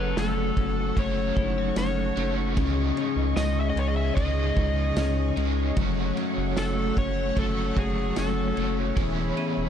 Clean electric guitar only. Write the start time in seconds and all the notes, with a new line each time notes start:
Already playing: F#3 C#4
0.18 A3
0.57 C#4
0.98 A3
1.38 E4
1.58 F#4
1.77 C#4
2.18 A3
2.57 C#3
2.97 C#4
3.38 G#3
3.77 C#4
4.18 G#3
4.57 D#4
4.97 C#4
5.37 G#3
5.77 F#3
6.17 C#4
6.57 A3
6.97 C#4
7.37 A3
7.77 F#4
8.17 C#4
8.57 A3
8.97 E3
9.37 C#4